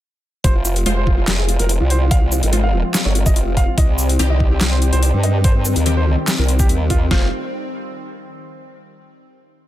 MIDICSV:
0, 0, Header, 1, 6, 480
1, 0, Start_track
1, 0, Key_signature, -4, "minor"
1, 0, Tempo, 416667
1, 510, Time_signature, 4, 2, 24, 8
1, 11149, End_track
2, 0, Start_track
2, 0, Title_t, "Grand piano"
2, 0, Program_c, 0, 0
2, 510, Note_on_c, 0, 72, 99
2, 593, Note_off_c, 0, 72, 0
2, 636, Note_on_c, 0, 65, 62
2, 712, Note_off_c, 0, 65, 0
2, 751, Note_on_c, 0, 65, 63
2, 834, Note_off_c, 0, 65, 0
2, 991, Note_on_c, 0, 65, 67
2, 1074, Note_off_c, 0, 65, 0
2, 1117, Note_on_c, 0, 72, 91
2, 1192, Note_off_c, 0, 72, 0
2, 1232, Note_on_c, 0, 65, 63
2, 1314, Note_off_c, 0, 65, 0
2, 1357, Note_on_c, 0, 65, 61
2, 1433, Note_off_c, 0, 65, 0
2, 1470, Note_on_c, 0, 65, 67
2, 1554, Note_off_c, 0, 65, 0
2, 1596, Note_on_c, 0, 68, 91
2, 1672, Note_off_c, 0, 68, 0
2, 1712, Note_on_c, 0, 65, 69
2, 1794, Note_off_c, 0, 65, 0
2, 1836, Note_on_c, 0, 70, 96
2, 1912, Note_off_c, 0, 70, 0
2, 1952, Note_on_c, 0, 65, 64
2, 2034, Note_off_c, 0, 65, 0
2, 2077, Note_on_c, 0, 65, 62
2, 2152, Note_off_c, 0, 65, 0
2, 2192, Note_on_c, 0, 72, 90
2, 2274, Note_off_c, 0, 72, 0
2, 2316, Note_on_c, 0, 65, 67
2, 2392, Note_off_c, 0, 65, 0
2, 2432, Note_on_c, 0, 77, 97
2, 2514, Note_off_c, 0, 77, 0
2, 2556, Note_on_c, 0, 65, 59
2, 2632, Note_off_c, 0, 65, 0
2, 2669, Note_on_c, 0, 65, 65
2, 2753, Note_off_c, 0, 65, 0
2, 2910, Note_on_c, 0, 65, 66
2, 2993, Note_off_c, 0, 65, 0
2, 3036, Note_on_c, 0, 77, 101
2, 3112, Note_off_c, 0, 77, 0
2, 3151, Note_on_c, 0, 65, 62
2, 3234, Note_off_c, 0, 65, 0
2, 3277, Note_on_c, 0, 65, 63
2, 3352, Note_off_c, 0, 65, 0
2, 3392, Note_on_c, 0, 65, 68
2, 3474, Note_off_c, 0, 65, 0
2, 3517, Note_on_c, 0, 73, 88
2, 3592, Note_off_c, 0, 73, 0
2, 3631, Note_on_c, 0, 65, 66
2, 3714, Note_off_c, 0, 65, 0
2, 3757, Note_on_c, 0, 75, 97
2, 3832, Note_off_c, 0, 75, 0
2, 3872, Note_on_c, 0, 65, 65
2, 3954, Note_off_c, 0, 65, 0
2, 3997, Note_on_c, 0, 65, 61
2, 4072, Note_off_c, 0, 65, 0
2, 4111, Note_on_c, 0, 77, 95
2, 4194, Note_off_c, 0, 77, 0
2, 4238, Note_on_c, 0, 65, 66
2, 4313, Note_off_c, 0, 65, 0
2, 4351, Note_on_c, 0, 75, 101
2, 4434, Note_off_c, 0, 75, 0
2, 4477, Note_on_c, 0, 67, 60
2, 4553, Note_off_c, 0, 67, 0
2, 4591, Note_on_c, 0, 67, 65
2, 4674, Note_off_c, 0, 67, 0
2, 4831, Note_on_c, 0, 67, 66
2, 4914, Note_off_c, 0, 67, 0
2, 4956, Note_on_c, 0, 75, 98
2, 5032, Note_off_c, 0, 75, 0
2, 5072, Note_on_c, 0, 67, 65
2, 5154, Note_off_c, 0, 67, 0
2, 5199, Note_on_c, 0, 67, 63
2, 5273, Note_off_c, 0, 67, 0
2, 5311, Note_on_c, 0, 67, 71
2, 5394, Note_off_c, 0, 67, 0
2, 5436, Note_on_c, 0, 72, 87
2, 5512, Note_off_c, 0, 72, 0
2, 5551, Note_on_c, 0, 67, 69
2, 5634, Note_off_c, 0, 67, 0
2, 5675, Note_on_c, 0, 72, 101
2, 5751, Note_off_c, 0, 72, 0
2, 5790, Note_on_c, 0, 67, 70
2, 5874, Note_off_c, 0, 67, 0
2, 5916, Note_on_c, 0, 67, 62
2, 5992, Note_off_c, 0, 67, 0
2, 6031, Note_on_c, 0, 75, 92
2, 6114, Note_off_c, 0, 75, 0
2, 6157, Note_on_c, 0, 67, 67
2, 6232, Note_off_c, 0, 67, 0
2, 6272, Note_on_c, 0, 72, 100
2, 6354, Note_off_c, 0, 72, 0
2, 6397, Note_on_c, 0, 60, 64
2, 6473, Note_off_c, 0, 60, 0
2, 6513, Note_on_c, 0, 60, 64
2, 6595, Note_off_c, 0, 60, 0
2, 6751, Note_on_c, 0, 60, 68
2, 6834, Note_off_c, 0, 60, 0
2, 6878, Note_on_c, 0, 72, 91
2, 6953, Note_off_c, 0, 72, 0
2, 6992, Note_on_c, 0, 60, 66
2, 7075, Note_off_c, 0, 60, 0
2, 7118, Note_on_c, 0, 60, 62
2, 7193, Note_off_c, 0, 60, 0
2, 7234, Note_on_c, 0, 60, 67
2, 7315, Note_off_c, 0, 60, 0
2, 7359, Note_on_c, 0, 70, 88
2, 7433, Note_off_c, 0, 70, 0
2, 7473, Note_on_c, 0, 60, 72
2, 7555, Note_off_c, 0, 60, 0
2, 7598, Note_on_c, 0, 67, 99
2, 7673, Note_off_c, 0, 67, 0
2, 7712, Note_on_c, 0, 60, 64
2, 7794, Note_off_c, 0, 60, 0
2, 7837, Note_on_c, 0, 60, 65
2, 7912, Note_off_c, 0, 60, 0
2, 7951, Note_on_c, 0, 65, 92
2, 8034, Note_off_c, 0, 65, 0
2, 8078, Note_on_c, 0, 60, 66
2, 8153, Note_off_c, 0, 60, 0
2, 8192, Note_on_c, 0, 65, 94
2, 8372, Note_off_c, 0, 65, 0
2, 11149, End_track
3, 0, Start_track
3, 0, Title_t, "Synth stab"
3, 0, Program_c, 1, 62
3, 990, Note_on_c, 1, 56, 96
3, 990, Note_on_c, 1, 65, 91
3, 990, Note_on_c, 1, 72, 103
3, 1114, Note_off_c, 1, 56, 0
3, 1114, Note_off_c, 1, 65, 0
3, 1114, Note_off_c, 1, 72, 0
3, 2912, Note_on_c, 1, 56, 75
3, 2912, Note_on_c, 1, 65, 74
3, 2912, Note_on_c, 1, 72, 80
3, 3102, Note_off_c, 1, 56, 0
3, 3102, Note_off_c, 1, 65, 0
3, 3102, Note_off_c, 1, 72, 0
3, 4831, Note_on_c, 1, 51, 91
3, 4831, Note_on_c, 1, 60, 83
3, 4831, Note_on_c, 1, 67, 109
3, 4954, Note_off_c, 1, 51, 0
3, 4954, Note_off_c, 1, 60, 0
3, 4954, Note_off_c, 1, 67, 0
3, 6750, Note_on_c, 1, 51, 78
3, 6751, Note_on_c, 1, 60, 72
3, 6751, Note_on_c, 1, 67, 90
3, 6942, Note_off_c, 1, 51, 0
3, 6942, Note_off_c, 1, 60, 0
3, 6942, Note_off_c, 1, 67, 0
3, 8191, Note_on_c, 1, 57, 87
3, 8191, Note_on_c, 1, 65, 79
3, 8191, Note_on_c, 1, 72, 92
3, 8371, Note_off_c, 1, 57, 0
3, 8371, Note_off_c, 1, 65, 0
3, 8371, Note_off_c, 1, 72, 0
3, 11149, End_track
4, 0, Start_track
4, 0, Title_t, "Ambient pad"
4, 0, Program_c, 2, 92
4, 510, Note_on_c, 2, 53, 83
4, 510, Note_on_c, 2, 56, 74
4, 510, Note_on_c, 2, 60, 91
4, 4312, Note_off_c, 2, 53, 0
4, 4312, Note_off_c, 2, 56, 0
4, 4349, Note_on_c, 2, 51, 81
4, 4350, Note_on_c, 2, 55, 78
4, 8144, Note_off_c, 2, 60, 0
4, 8152, Note_off_c, 2, 51, 0
4, 8152, Note_off_c, 2, 55, 0
4, 11149, End_track
5, 0, Start_track
5, 0, Title_t, "Wobble bass"
5, 0, Program_c, 3, 39
5, 510, Note_on_c, 3, 29, 98
5, 972, Note_off_c, 3, 29, 0
5, 991, Note_on_c, 3, 29, 102
5, 1453, Note_off_c, 3, 29, 0
5, 1471, Note_on_c, 3, 29, 104
5, 1816, Note_off_c, 3, 29, 0
5, 1836, Note_on_c, 3, 29, 99
5, 2056, Note_off_c, 3, 29, 0
5, 2075, Note_on_c, 3, 36, 98
5, 2775, Note_off_c, 3, 36, 0
5, 2797, Note_on_c, 3, 32, 102
5, 3256, Note_off_c, 3, 32, 0
5, 3516, Note_on_c, 3, 31, 101
5, 3736, Note_off_c, 3, 31, 0
5, 3757, Note_on_c, 3, 29, 97
5, 4216, Note_off_c, 3, 29, 0
5, 4351, Note_on_c, 3, 36, 104
5, 4812, Note_off_c, 3, 36, 0
5, 4832, Note_on_c, 3, 36, 102
5, 5293, Note_off_c, 3, 36, 0
5, 5311, Note_on_c, 3, 36, 97
5, 5656, Note_off_c, 3, 36, 0
5, 5676, Note_on_c, 3, 36, 96
5, 5896, Note_off_c, 3, 36, 0
5, 5917, Note_on_c, 3, 43, 98
5, 6616, Note_off_c, 3, 43, 0
5, 6636, Note_on_c, 3, 39, 102
5, 7096, Note_off_c, 3, 39, 0
5, 7356, Note_on_c, 3, 36, 97
5, 7692, Note_off_c, 3, 36, 0
5, 7711, Note_on_c, 3, 39, 101
5, 8173, Note_off_c, 3, 39, 0
5, 8191, Note_on_c, 3, 29, 103
5, 8414, Note_off_c, 3, 29, 0
5, 11149, End_track
6, 0, Start_track
6, 0, Title_t, "Drums"
6, 510, Note_on_c, 9, 36, 117
6, 510, Note_on_c, 9, 42, 81
6, 625, Note_off_c, 9, 36, 0
6, 625, Note_off_c, 9, 42, 0
6, 750, Note_on_c, 9, 82, 81
6, 865, Note_off_c, 9, 82, 0
6, 876, Note_on_c, 9, 42, 53
6, 990, Note_off_c, 9, 42, 0
6, 990, Note_on_c, 9, 42, 78
6, 1105, Note_off_c, 9, 42, 0
6, 1230, Note_on_c, 9, 36, 64
6, 1345, Note_off_c, 9, 36, 0
6, 1470, Note_on_c, 9, 38, 127
6, 1470, Note_on_c, 9, 39, 95
6, 1470, Note_on_c, 9, 42, 82
6, 1585, Note_off_c, 9, 38, 0
6, 1585, Note_off_c, 9, 39, 0
6, 1585, Note_off_c, 9, 42, 0
6, 1711, Note_on_c, 9, 42, 55
6, 1826, Note_off_c, 9, 42, 0
6, 1836, Note_on_c, 9, 42, 52
6, 1950, Note_off_c, 9, 42, 0
6, 1950, Note_on_c, 9, 42, 87
6, 2066, Note_off_c, 9, 42, 0
6, 2191, Note_on_c, 9, 42, 57
6, 2307, Note_off_c, 9, 42, 0
6, 2431, Note_on_c, 9, 36, 121
6, 2431, Note_on_c, 9, 42, 85
6, 2546, Note_off_c, 9, 36, 0
6, 2546, Note_off_c, 9, 42, 0
6, 2672, Note_on_c, 9, 82, 78
6, 2787, Note_off_c, 9, 82, 0
6, 2797, Note_on_c, 9, 42, 53
6, 2911, Note_off_c, 9, 42, 0
6, 2911, Note_on_c, 9, 42, 80
6, 3026, Note_off_c, 9, 42, 0
6, 3391, Note_on_c, 9, 38, 127
6, 3391, Note_on_c, 9, 39, 94
6, 3391, Note_on_c, 9, 42, 78
6, 3391, Note_on_c, 9, 82, 81
6, 3507, Note_off_c, 9, 38, 0
6, 3507, Note_off_c, 9, 39, 0
6, 3507, Note_off_c, 9, 42, 0
6, 3507, Note_off_c, 9, 82, 0
6, 3631, Note_on_c, 9, 42, 55
6, 3747, Note_off_c, 9, 42, 0
6, 3756, Note_on_c, 9, 36, 116
6, 3757, Note_on_c, 9, 42, 52
6, 3757, Note_on_c, 9, 82, 49
6, 3872, Note_off_c, 9, 36, 0
6, 3872, Note_off_c, 9, 42, 0
6, 3872, Note_on_c, 9, 42, 82
6, 3873, Note_off_c, 9, 82, 0
6, 3987, Note_off_c, 9, 42, 0
6, 4111, Note_on_c, 9, 36, 63
6, 4111, Note_on_c, 9, 42, 52
6, 4226, Note_off_c, 9, 36, 0
6, 4227, Note_off_c, 9, 42, 0
6, 4351, Note_on_c, 9, 36, 120
6, 4351, Note_on_c, 9, 42, 80
6, 4466, Note_off_c, 9, 36, 0
6, 4467, Note_off_c, 9, 42, 0
6, 4592, Note_on_c, 9, 82, 80
6, 4707, Note_off_c, 9, 82, 0
6, 4717, Note_on_c, 9, 42, 55
6, 4831, Note_off_c, 9, 42, 0
6, 4831, Note_on_c, 9, 42, 73
6, 4946, Note_off_c, 9, 42, 0
6, 5071, Note_on_c, 9, 36, 70
6, 5186, Note_off_c, 9, 36, 0
6, 5311, Note_on_c, 9, 38, 127
6, 5311, Note_on_c, 9, 39, 90
6, 5311, Note_on_c, 9, 42, 78
6, 5426, Note_off_c, 9, 38, 0
6, 5426, Note_off_c, 9, 39, 0
6, 5426, Note_off_c, 9, 42, 0
6, 5550, Note_on_c, 9, 42, 53
6, 5665, Note_off_c, 9, 42, 0
6, 5676, Note_on_c, 9, 42, 52
6, 5790, Note_off_c, 9, 42, 0
6, 5790, Note_on_c, 9, 42, 80
6, 5905, Note_off_c, 9, 42, 0
6, 6030, Note_on_c, 9, 42, 50
6, 6145, Note_off_c, 9, 42, 0
6, 6269, Note_on_c, 9, 42, 72
6, 6270, Note_on_c, 9, 36, 126
6, 6384, Note_off_c, 9, 42, 0
6, 6386, Note_off_c, 9, 36, 0
6, 6509, Note_on_c, 9, 82, 80
6, 6625, Note_off_c, 9, 82, 0
6, 6635, Note_on_c, 9, 42, 52
6, 6749, Note_off_c, 9, 42, 0
6, 6749, Note_on_c, 9, 42, 72
6, 6865, Note_off_c, 9, 42, 0
6, 7230, Note_on_c, 9, 38, 127
6, 7230, Note_on_c, 9, 39, 90
6, 7230, Note_on_c, 9, 42, 80
6, 7230, Note_on_c, 9, 82, 78
6, 7345, Note_off_c, 9, 38, 0
6, 7345, Note_off_c, 9, 39, 0
6, 7345, Note_off_c, 9, 42, 0
6, 7345, Note_off_c, 9, 82, 0
6, 7470, Note_on_c, 9, 42, 53
6, 7585, Note_off_c, 9, 42, 0
6, 7596, Note_on_c, 9, 36, 116
6, 7596, Note_on_c, 9, 42, 51
6, 7596, Note_on_c, 9, 82, 52
6, 7710, Note_off_c, 9, 42, 0
6, 7710, Note_on_c, 9, 42, 75
6, 7711, Note_off_c, 9, 36, 0
6, 7711, Note_off_c, 9, 82, 0
6, 7825, Note_off_c, 9, 42, 0
6, 7950, Note_on_c, 9, 42, 49
6, 7951, Note_on_c, 9, 36, 64
6, 8065, Note_off_c, 9, 42, 0
6, 8066, Note_off_c, 9, 36, 0
6, 8191, Note_on_c, 9, 36, 105
6, 8191, Note_on_c, 9, 38, 101
6, 8306, Note_off_c, 9, 36, 0
6, 8306, Note_off_c, 9, 38, 0
6, 11149, End_track
0, 0, End_of_file